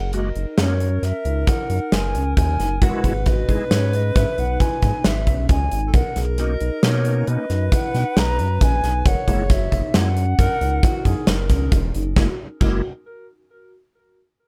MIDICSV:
0, 0, Header, 1, 7, 480
1, 0, Start_track
1, 0, Tempo, 445434
1, 3037, Time_signature, 7, 2, 24, 8
1, 15603, End_track
2, 0, Start_track
2, 0, Title_t, "Flute"
2, 0, Program_c, 0, 73
2, 0, Note_on_c, 0, 78, 72
2, 115, Note_off_c, 0, 78, 0
2, 151, Note_on_c, 0, 75, 70
2, 597, Note_off_c, 0, 75, 0
2, 631, Note_on_c, 0, 73, 78
2, 1115, Note_on_c, 0, 76, 86
2, 1131, Note_off_c, 0, 73, 0
2, 1593, Note_on_c, 0, 78, 77
2, 1609, Note_off_c, 0, 76, 0
2, 2070, Note_on_c, 0, 80, 82
2, 2087, Note_off_c, 0, 78, 0
2, 2548, Note_off_c, 0, 80, 0
2, 2555, Note_on_c, 0, 80, 102
2, 3042, Note_on_c, 0, 78, 81
2, 3058, Note_off_c, 0, 80, 0
2, 3525, Note_on_c, 0, 75, 86
2, 3541, Note_off_c, 0, 78, 0
2, 4002, Note_off_c, 0, 75, 0
2, 4010, Note_on_c, 0, 73, 85
2, 4257, Note_on_c, 0, 75, 90
2, 4273, Note_off_c, 0, 73, 0
2, 4486, Note_on_c, 0, 76, 86
2, 4502, Note_off_c, 0, 75, 0
2, 4725, Note_on_c, 0, 78, 97
2, 4741, Note_off_c, 0, 76, 0
2, 4955, Note_on_c, 0, 80, 83
2, 4972, Note_off_c, 0, 78, 0
2, 5443, Note_on_c, 0, 76, 82
2, 5459, Note_off_c, 0, 80, 0
2, 5914, Note_off_c, 0, 76, 0
2, 5920, Note_on_c, 0, 80, 95
2, 6401, Note_on_c, 0, 78, 91
2, 6418, Note_off_c, 0, 80, 0
2, 6667, Note_off_c, 0, 78, 0
2, 6885, Note_on_c, 0, 75, 83
2, 7374, Note_on_c, 0, 73, 94
2, 7390, Note_off_c, 0, 75, 0
2, 7848, Note_on_c, 0, 75, 92
2, 7864, Note_off_c, 0, 73, 0
2, 8326, Note_on_c, 0, 78, 96
2, 8342, Note_off_c, 0, 75, 0
2, 8812, Note_on_c, 0, 82, 102
2, 8828, Note_off_c, 0, 78, 0
2, 9289, Note_on_c, 0, 80, 108
2, 9306, Note_off_c, 0, 82, 0
2, 9764, Note_on_c, 0, 78, 91
2, 9780, Note_off_c, 0, 80, 0
2, 10245, Note_on_c, 0, 76, 85
2, 10261, Note_off_c, 0, 78, 0
2, 10730, Note_on_c, 0, 78, 112
2, 10747, Note_off_c, 0, 76, 0
2, 12639, Note_off_c, 0, 78, 0
2, 15603, End_track
3, 0, Start_track
3, 0, Title_t, "Alto saxophone"
3, 0, Program_c, 1, 65
3, 0, Note_on_c, 1, 70, 100
3, 2992, Note_off_c, 1, 70, 0
3, 3035, Note_on_c, 1, 71, 116
3, 6067, Note_off_c, 1, 71, 0
3, 6330, Note_on_c, 1, 69, 58
3, 6396, Note_on_c, 1, 70, 97
3, 6413, Note_off_c, 1, 69, 0
3, 7841, Note_on_c, 1, 71, 113
3, 7857, Note_off_c, 1, 70, 0
3, 9755, Note_on_c, 1, 73, 101
3, 9771, Note_off_c, 1, 71, 0
3, 10904, Note_off_c, 1, 73, 0
3, 11188, Note_on_c, 1, 70, 115
3, 11676, Note_on_c, 1, 66, 96
3, 11692, Note_off_c, 1, 70, 0
3, 11912, Note_on_c, 1, 68, 81
3, 11928, Note_off_c, 1, 66, 0
3, 12152, Note_on_c, 1, 70, 91
3, 12168, Note_off_c, 1, 68, 0
3, 12871, Note_off_c, 1, 70, 0
3, 13121, Note_on_c, 1, 70, 66
3, 13250, Note_off_c, 1, 70, 0
3, 13594, Note_on_c, 1, 70, 73
3, 13815, Note_off_c, 1, 70, 0
3, 15603, End_track
4, 0, Start_track
4, 0, Title_t, "Vibraphone"
4, 0, Program_c, 2, 11
4, 145, Note_on_c, 2, 66, 65
4, 312, Note_off_c, 2, 66, 0
4, 384, Note_on_c, 2, 63, 63
4, 552, Note_off_c, 2, 63, 0
4, 625, Note_on_c, 2, 61, 82
4, 792, Note_off_c, 2, 61, 0
4, 866, Note_on_c, 2, 61, 67
4, 1201, Note_off_c, 2, 61, 0
4, 1351, Note_on_c, 2, 63, 68
4, 1518, Note_off_c, 2, 63, 0
4, 1590, Note_on_c, 2, 64, 80
4, 1757, Note_off_c, 2, 64, 0
4, 1834, Note_on_c, 2, 63, 67
4, 2167, Note_off_c, 2, 63, 0
4, 2314, Note_on_c, 2, 61, 73
4, 2647, Note_off_c, 2, 61, 0
4, 2799, Note_on_c, 2, 63, 77
4, 2964, Note_off_c, 2, 63, 0
4, 3039, Note_on_c, 2, 70, 83
4, 3205, Note_off_c, 2, 70, 0
4, 3276, Note_on_c, 2, 68, 63
4, 3443, Note_off_c, 2, 68, 0
4, 3519, Note_on_c, 2, 66, 80
4, 3684, Note_off_c, 2, 66, 0
4, 3759, Note_on_c, 2, 63, 67
4, 3925, Note_off_c, 2, 63, 0
4, 4001, Note_on_c, 2, 61, 77
4, 4166, Note_off_c, 2, 61, 0
4, 4242, Note_on_c, 2, 61, 64
4, 4573, Note_off_c, 2, 61, 0
4, 4725, Note_on_c, 2, 63, 79
4, 4889, Note_off_c, 2, 63, 0
4, 4960, Note_on_c, 2, 64, 74
4, 5126, Note_off_c, 2, 64, 0
4, 5201, Note_on_c, 2, 63, 66
4, 5532, Note_off_c, 2, 63, 0
4, 5682, Note_on_c, 2, 61, 80
4, 6013, Note_off_c, 2, 61, 0
4, 6160, Note_on_c, 2, 63, 80
4, 6326, Note_off_c, 2, 63, 0
4, 6404, Note_on_c, 2, 70, 86
4, 6568, Note_off_c, 2, 70, 0
4, 6641, Note_on_c, 2, 68, 75
4, 6807, Note_off_c, 2, 68, 0
4, 6878, Note_on_c, 2, 66, 79
4, 7044, Note_off_c, 2, 66, 0
4, 7118, Note_on_c, 2, 63, 66
4, 7284, Note_off_c, 2, 63, 0
4, 7355, Note_on_c, 2, 61, 85
4, 7523, Note_off_c, 2, 61, 0
4, 7600, Note_on_c, 2, 61, 73
4, 7931, Note_off_c, 2, 61, 0
4, 8079, Note_on_c, 2, 63, 76
4, 8245, Note_off_c, 2, 63, 0
4, 8321, Note_on_c, 2, 64, 77
4, 8486, Note_off_c, 2, 64, 0
4, 8557, Note_on_c, 2, 63, 79
4, 8888, Note_off_c, 2, 63, 0
4, 9038, Note_on_c, 2, 61, 82
4, 9369, Note_off_c, 2, 61, 0
4, 9519, Note_on_c, 2, 63, 71
4, 9683, Note_off_c, 2, 63, 0
4, 9763, Note_on_c, 2, 70, 81
4, 9926, Note_off_c, 2, 70, 0
4, 10004, Note_on_c, 2, 68, 70
4, 10167, Note_off_c, 2, 68, 0
4, 10238, Note_on_c, 2, 66, 69
4, 10403, Note_off_c, 2, 66, 0
4, 10478, Note_on_c, 2, 63, 73
4, 10642, Note_off_c, 2, 63, 0
4, 10717, Note_on_c, 2, 61, 80
4, 10882, Note_off_c, 2, 61, 0
4, 10960, Note_on_c, 2, 61, 71
4, 11289, Note_off_c, 2, 61, 0
4, 11433, Note_on_c, 2, 63, 76
4, 11598, Note_off_c, 2, 63, 0
4, 11669, Note_on_c, 2, 64, 81
4, 11836, Note_off_c, 2, 64, 0
4, 11911, Note_on_c, 2, 63, 76
4, 12243, Note_off_c, 2, 63, 0
4, 12388, Note_on_c, 2, 61, 80
4, 12721, Note_off_c, 2, 61, 0
4, 12872, Note_on_c, 2, 63, 78
4, 13037, Note_off_c, 2, 63, 0
4, 13107, Note_on_c, 2, 66, 78
4, 13242, Note_off_c, 2, 66, 0
4, 13593, Note_on_c, 2, 66, 80
4, 13815, Note_off_c, 2, 66, 0
4, 15603, End_track
5, 0, Start_track
5, 0, Title_t, "Tonewheel organ"
5, 0, Program_c, 3, 16
5, 146, Note_on_c, 3, 56, 69
5, 146, Note_on_c, 3, 58, 62
5, 148, Note_on_c, 3, 66, 67
5, 315, Note_off_c, 3, 56, 0
5, 315, Note_off_c, 3, 58, 0
5, 316, Note_off_c, 3, 66, 0
5, 621, Note_on_c, 3, 56, 64
5, 625, Note_on_c, 3, 58, 65
5, 625, Note_on_c, 3, 61, 75
5, 793, Note_off_c, 3, 56, 0
5, 795, Note_off_c, 3, 58, 0
5, 795, Note_off_c, 3, 61, 0
5, 3037, Note_on_c, 3, 56, 73
5, 3040, Note_on_c, 3, 64, 65
5, 3040, Note_on_c, 3, 66, 80
5, 3373, Note_off_c, 3, 56, 0
5, 3375, Note_off_c, 3, 64, 0
5, 3375, Note_off_c, 3, 66, 0
5, 3761, Note_on_c, 3, 56, 58
5, 3762, Note_on_c, 3, 64, 55
5, 3762, Note_on_c, 3, 68, 72
5, 3928, Note_off_c, 3, 56, 0
5, 3928, Note_off_c, 3, 64, 0
5, 3928, Note_off_c, 3, 68, 0
5, 6886, Note_on_c, 3, 58, 62
5, 6886, Note_on_c, 3, 61, 57
5, 6888, Note_on_c, 3, 63, 71
5, 7051, Note_off_c, 3, 58, 0
5, 7051, Note_off_c, 3, 61, 0
5, 7052, Note_off_c, 3, 63, 0
5, 7361, Note_on_c, 3, 61, 52
5, 7363, Note_on_c, 3, 58, 64
5, 7363, Note_on_c, 3, 63, 75
5, 8031, Note_off_c, 3, 61, 0
5, 8032, Note_off_c, 3, 58, 0
5, 8032, Note_off_c, 3, 63, 0
5, 9996, Note_on_c, 3, 58, 72
5, 9998, Note_on_c, 3, 56, 79
5, 9999, Note_on_c, 3, 64, 79
5, 10163, Note_off_c, 3, 58, 0
5, 10164, Note_off_c, 3, 56, 0
5, 10164, Note_off_c, 3, 64, 0
5, 10718, Note_on_c, 3, 56, 62
5, 10718, Note_on_c, 3, 58, 61
5, 10722, Note_on_c, 3, 64, 74
5, 10884, Note_off_c, 3, 56, 0
5, 10884, Note_off_c, 3, 58, 0
5, 10885, Note_off_c, 3, 64, 0
5, 13114, Note_on_c, 3, 56, 84
5, 13115, Note_on_c, 3, 64, 91
5, 13116, Note_on_c, 3, 58, 78
5, 13246, Note_off_c, 3, 56, 0
5, 13247, Note_off_c, 3, 58, 0
5, 13247, Note_off_c, 3, 64, 0
5, 13584, Note_on_c, 3, 58, 76
5, 13586, Note_on_c, 3, 64, 84
5, 13587, Note_on_c, 3, 56, 78
5, 13810, Note_off_c, 3, 58, 0
5, 13811, Note_off_c, 3, 64, 0
5, 13812, Note_off_c, 3, 56, 0
5, 15603, End_track
6, 0, Start_track
6, 0, Title_t, "Analog synth bass"
6, 0, Program_c, 4, 38
6, 0, Note_on_c, 4, 30, 82
6, 344, Note_off_c, 4, 30, 0
6, 384, Note_on_c, 4, 30, 73
6, 495, Note_off_c, 4, 30, 0
6, 626, Note_on_c, 4, 42, 91
6, 1066, Note_off_c, 4, 42, 0
6, 1105, Note_on_c, 4, 42, 89
6, 1216, Note_off_c, 4, 42, 0
6, 1348, Note_on_c, 4, 37, 91
6, 1568, Note_off_c, 4, 37, 0
6, 1828, Note_on_c, 4, 42, 83
6, 1939, Note_off_c, 4, 42, 0
6, 2072, Note_on_c, 4, 30, 76
6, 2315, Note_on_c, 4, 37, 75
6, 2331, Note_off_c, 4, 30, 0
6, 2532, Note_off_c, 4, 37, 0
6, 2556, Note_on_c, 4, 39, 103
6, 2774, Note_off_c, 4, 39, 0
6, 2795, Note_on_c, 4, 30, 91
6, 3013, Note_off_c, 4, 30, 0
6, 3033, Note_on_c, 4, 32, 92
6, 3143, Note_off_c, 4, 32, 0
6, 3277, Note_on_c, 4, 32, 89
6, 3714, Note_off_c, 4, 32, 0
6, 3756, Note_on_c, 4, 32, 84
6, 3866, Note_off_c, 4, 32, 0
6, 3999, Note_on_c, 4, 44, 101
6, 4436, Note_off_c, 4, 44, 0
6, 4477, Note_on_c, 4, 44, 88
6, 4587, Note_off_c, 4, 44, 0
6, 4722, Note_on_c, 4, 35, 82
6, 4938, Note_off_c, 4, 35, 0
6, 5200, Note_on_c, 4, 44, 85
6, 5309, Note_off_c, 4, 44, 0
6, 5445, Note_on_c, 4, 32, 85
6, 5677, Note_on_c, 4, 35, 76
6, 5694, Note_off_c, 4, 32, 0
6, 5896, Note_off_c, 4, 35, 0
6, 5919, Note_on_c, 4, 37, 96
6, 6137, Note_off_c, 4, 37, 0
6, 6166, Note_on_c, 4, 32, 84
6, 6381, Note_off_c, 4, 32, 0
6, 6398, Note_on_c, 4, 35, 98
6, 6507, Note_off_c, 4, 35, 0
6, 6639, Note_on_c, 4, 35, 88
6, 7076, Note_off_c, 4, 35, 0
6, 7122, Note_on_c, 4, 35, 82
6, 7230, Note_off_c, 4, 35, 0
6, 7364, Note_on_c, 4, 47, 93
6, 7798, Note_off_c, 4, 47, 0
6, 7842, Note_on_c, 4, 47, 91
6, 7949, Note_off_c, 4, 47, 0
6, 8081, Note_on_c, 4, 42, 87
6, 8297, Note_off_c, 4, 42, 0
6, 8562, Note_on_c, 4, 47, 89
6, 8668, Note_off_c, 4, 47, 0
6, 8799, Note_on_c, 4, 35, 88
6, 9040, Note_on_c, 4, 42, 89
6, 9056, Note_off_c, 4, 35, 0
6, 9256, Note_off_c, 4, 42, 0
6, 9280, Note_on_c, 4, 34, 93
6, 9495, Note_off_c, 4, 34, 0
6, 9520, Note_on_c, 4, 35, 88
6, 9735, Note_off_c, 4, 35, 0
6, 9757, Note_on_c, 4, 30, 97
6, 9865, Note_off_c, 4, 30, 0
6, 9997, Note_on_c, 4, 30, 88
6, 10432, Note_off_c, 4, 30, 0
6, 10475, Note_on_c, 4, 30, 90
6, 10583, Note_off_c, 4, 30, 0
6, 10715, Note_on_c, 4, 42, 105
6, 11150, Note_off_c, 4, 42, 0
6, 11195, Note_on_c, 4, 42, 89
6, 11302, Note_off_c, 4, 42, 0
6, 11434, Note_on_c, 4, 37, 84
6, 11650, Note_off_c, 4, 37, 0
6, 11911, Note_on_c, 4, 42, 93
6, 12020, Note_off_c, 4, 42, 0
6, 12152, Note_on_c, 4, 30, 88
6, 12389, Note_on_c, 4, 37, 84
6, 12405, Note_off_c, 4, 30, 0
6, 12607, Note_off_c, 4, 37, 0
6, 12630, Note_on_c, 4, 28, 100
6, 12847, Note_off_c, 4, 28, 0
6, 12877, Note_on_c, 4, 30, 90
6, 13092, Note_off_c, 4, 30, 0
6, 13108, Note_on_c, 4, 30, 93
6, 13243, Note_off_c, 4, 30, 0
6, 13590, Note_on_c, 4, 30, 100
6, 13813, Note_off_c, 4, 30, 0
6, 15603, End_track
7, 0, Start_track
7, 0, Title_t, "Drums"
7, 139, Note_on_c, 9, 42, 72
7, 247, Note_off_c, 9, 42, 0
7, 383, Note_on_c, 9, 42, 50
7, 491, Note_off_c, 9, 42, 0
7, 621, Note_on_c, 9, 38, 105
7, 621, Note_on_c, 9, 42, 76
7, 728, Note_off_c, 9, 38, 0
7, 728, Note_off_c, 9, 42, 0
7, 866, Note_on_c, 9, 42, 50
7, 974, Note_off_c, 9, 42, 0
7, 1110, Note_on_c, 9, 38, 35
7, 1110, Note_on_c, 9, 42, 77
7, 1218, Note_off_c, 9, 38, 0
7, 1218, Note_off_c, 9, 42, 0
7, 1349, Note_on_c, 9, 42, 58
7, 1456, Note_off_c, 9, 42, 0
7, 1586, Note_on_c, 9, 38, 34
7, 1586, Note_on_c, 9, 42, 79
7, 1588, Note_on_c, 9, 36, 107
7, 1694, Note_off_c, 9, 38, 0
7, 1694, Note_off_c, 9, 42, 0
7, 1696, Note_off_c, 9, 36, 0
7, 1829, Note_on_c, 9, 42, 58
7, 1937, Note_off_c, 9, 42, 0
7, 2071, Note_on_c, 9, 38, 103
7, 2071, Note_on_c, 9, 42, 86
7, 2179, Note_off_c, 9, 38, 0
7, 2179, Note_off_c, 9, 42, 0
7, 2314, Note_on_c, 9, 42, 59
7, 2422, Note_off_c, 9, 42, 0
7, 2554, Note_on_c, 9, 36, 96
7, 2555, Note_on_c, 9, 42, 84
7, 2662, Note_off_c, 9, 36, 0
7, 2663, Note_off_c, 9, 42, 0
7, 2798, Note_on_c, 9, 38, 30
7, 2798, Note_on_c, 9, 42, 64
7, 2906, Note_off_c, 9, 38, 0
7, 2906, Note_off_c, 9, 42, 0
7, 3035, Note_on_c, 9, 42, 80
7, 3036, Note_on_c, 9, 36, 100
7, 3143, Note_off_c, 9, 42, 0
7, 3144, Note_off_c, 9, 36, 0
7, 3275, Note_on_c, 9, 42, 61
7, 3276, Note_on_c, 9, 36, 73
7, 3383, Note_off_c, 9, 42, 0
7, 3384, Note_off_c, 9, 36, 0
7, 3511, Note_on_c, 9, 42, 74
7, 3516, Note_on_c, 9, 36, 88
7, 3619, Note_off_c, 9, 42, 0
7, 3624, Note_off_c, 9, 36, 0
7, 3757, Note_on_c, 9, 36, 61
7, 3757, Note_on_c, 9, 42, 57
7, 3865, Note_off_c, 9, 36, 0
7, 3865, Note_off_c, 9, 42, 0
7, 3997, Note_on_c, 9, 38, 105
7, 3997, Note_on_c, 9, 42, 82
7, 4105, Note_off_c, 9, 38, 0
7, 4105, Note_off_c, 9, 42, 0
7, 4239, Note_on_c, 9, 42, 55
7, 4347, Note_off_c, 9, 42, 0
7, 4478, Note_on_c, 9, 38, 32
7, 4478, Note_on_c, 9, 42, 82
7, 4480, Note_on_c, 9, 36, 109
7, 4586, Note_off_c, 9, 38, 0
7, 4586, Note_off_c, 9, 42, 0
7, 4588, Note_off_c, 9, 36, 0
7, 4720, Note_on_c, 9, 42, 51
7, 4828, Note_off_c, 9, 42, 0
7, 4959, Note_on_c, 9, 42, 75
7, 4960, Note_on_c, 9, 36, 97
7, 5067, Note_off_c, 9, 42, 0
7, 5068, Note_off_c, 9, 36, 0
7, 5197, Note_on_c, 9, 42, 53
7, 5200, Note_on_c, 9, 36, 72
7, 5304, Note_off_c, 9, 42, 0
7, 5308, Note_off_c, 9, 36, 0
7, 5436, Note_on_c, 9, 38, 110
7, 5436, Note_on_c, 9, 42, 83
7, 5543, Note_off_c, 9, 38, 0
7, 5543, Note_off_c, 9, 42, 0
7, 5677, Note_on_c, 9, 42, 58
7, 5679, Note_on_c, 9, 36, 71
7, 5785, Note_off_c, 9, 42, 0
7, 5786, Note_off_c, 9, 36, 0
7, 5916, Note_on_c, 9, 42, 79
7, 5919, Note_on_c, 9, 36, 98
7, 6024, Note_off_c, 9, 42, 0
7, 6027, Note_off_c, 9, 36, 0
7, 6159, Note_on_c, 9, 42, 62
7, 6266, Note_off_c, 9, 42, 0
7, 6396, Note_on_c, 9, 42, 78
7, 6398, Note_on_c, 9, 36, 96
7, 6504, Note_off_c, 9, 42, 0
7, 6506, Note_off_c, 9, 36, 0
7, 6638, Note_on_c, 9, 38, 31
7, 6638, Note_on_c, 9, 42, 65
7, 6746, Note_off_c, 9, 38, 0
7, 6746, Note_off_c, 9, 42, 0
7, 6875, Note_on_c, 9, 38, 33
7, 6875, Note_on_c, 9, 42, 83
7, 6983, Note_off_c, 9, 38, 0
7, 6983, Note_off_c, 9, 42, 0
7, 7117, Note_on_c, 9, 42, 57
7, 7225, Note_off_c, 9, 42, 0
7, 7359, Note_on_c, 9, 38, 120
7, 7359, Note_on_c, 9, 42, 85
7, 7466, Note_off_c, 9, 38, 0
7, 7466, Note_off_c, 9, 42, 0
7, 7596, Note_on_c, 9, 42, 57
7, 7703, Note_off_c, 9, 42, 0
7, 7839, Note_on_c, 9, 42, 89
7, 7946, Note_off_c, 9, 42, 0
7, 8080, Note_on_c, 9, 38, 36
7, 8080, Note_on_c, 9, 42, 63
7, 8188, Note_off_c, 9, 38, 0
7, 8188, Note_off_c, 9, 42, 0
7, 8319, Note_on_c, 9, 36, 105
7, 8320, Note_on_c, 9, 42, 84
7, 8427, Note_off_c, 9, 36, 0
7, 8428, Note_off_c, 9, 42, 0
7, 8562, Note_on_c, 9, 38, 32
7, 8562, Note_on_c, 9, 42, 51
7, 8670, Note_off_c, 9, 38, 0
7, 8670, Note_off_c, 9, 42, 0
7, 8800, Note_on_c, 9, 38, 106
7, 8800, Note_on_c, 9, 42, 80
7, 8908, Note_off_c, 9, 38, 0
7, 8908, Note_off_c, 9, 42, 0
7, 9041, Note_on_c, 9, 42, 58
7, 9148, Note_off_c, 9, 42, 0
7, 9280, Note_on_c, 9, 36, 100
7, 9281, Note_on_c, 9, 42, 89
7, 9388, Note_off_c, 9, 36, 0
7, 9388, Note_off_c, 9, 42, 0
7, 9522, Note_on_c, 9, 38, 35
7, 9522, Note_on_c, 9, 42, 59
7, 9630, Note_off_c, 9, 38, 0
7, 9630, Note_off_c, 9, 42, 0
7, 9759, Note_on_c, 9, 36, 109
7, 9760, Note_on_c, 9, 42, 78
7, 9866, Note_off_c, 9, 36, 0
7, 9867, Note_off_c, 9, 42, 0
7, 9997, Note_on_c, 9, 36, 75
7, 9998, Note_on_c, 9, 42, 65
7, 10105, Note_off_c, 9, 36, 0
7, 10106, Note_off_c, 9, 42, 0
7, 10235, Note_on_c, 9, 36, 103
7, 10235, Note_on_c, 9, 38, 30
7, 10235, Note_on_c, 9, 42, 77
7, 10343, Note_off_c, 9, 36, 0
7, 10343, Note_off_c, 9, 38, 0
7, 10343, Note_off_c, 9, 42, 0
7, 10476, Note_on_c, 9, 36, 65
7, 10477, Note_on_c, 9, 42, 65
7, 10584, Note_off_c, 9, 36, 0
7, 10585, Note_off_c, 9, 42, 0
7, 10712, Note_on_c, 9, 38, 115
7, 10712, Note_on_c, 9, 42, 98
7, 10820, Note_off_c, 9, 38, 0
7, 10820, Note_off_c, 9, 42, 0
7, 10955, Note_on_c, 9, 42, 62
7, 11062, Note_off_c, 9, 42, 0
7, 11193, Note_on_c, 9, 36, 104
7, 11194, Note_on_c, 9, 42, 93
7, 11301, Note_off_c, 9, 36, 0
7, 11302, Note_off_c, 9, 42, 0
7, 11436, Note_on_c, 9, 42, 59
7, 11544, Note_off_c, 9, 42, 0
7, 11672, Note_on_c, 9, 36, 112
7, 11672, Note_on_c, 9, 42, 86
7, 11780, Note_off_c, 9, 36, 0
7, 11780, Note_off_c, 9, 42, 0
7, 11910, Note_on_c, 9, 36, 67
7, 11912, Note_on_c, 9, 42, 62
7, 12018, Note_off_c, 9, 36, 0
7, 12019, Note_off_c, 9, 42, 0
7, 12146, Note_on_c, 9, 38, 107
7, 12146, Note_on_c, 9, 42, 89
7, 12253, Note_off_c, 9, 38, 0
7, 12253, Note_off_c, 9, 42, 0
7, 12387, Note_on_c, 9, 38, 32
7, 12387, Note_on_c, 9, 42, 64
7, 12388, Note_on_c, 9, 36, 79
7, 12495, Note_off_c, 9, 38, 0
7, 12495, Note_off_c, 9, 42, 0
7, 12496, Note_off_c, 9, 36, 0
7, 12628, Note_on_c, 9, 42, 85
7, 12629, Note_on_c, 9, 36, 106
7, 12736, Note_off_c, 9, 42, 0
7, 12737, Note_off_c, 9, 36, 0
7, 12872, Note_on_c, 9, 42, 62
7, 12980, Note_off_c, 9, 42, 0
7, 13108, Note_on_c, 9, 36, 105
7, 13108, Note_on_c, 9, 38, 88
7, 13216, Note_off_c, 9, 36, 0
7, 13216, Note_off_c, 9, 38, 0
7, 13588, Note_on_c, 9, 36, 103
7, 13589, Note_on_c, 9, 49, 73
7, 13696, Note_off_c, 9, 36, 0
7, 13697, Note_off_c, 9, 49, 0
7, 15603, End_track
0, 0, End_of_file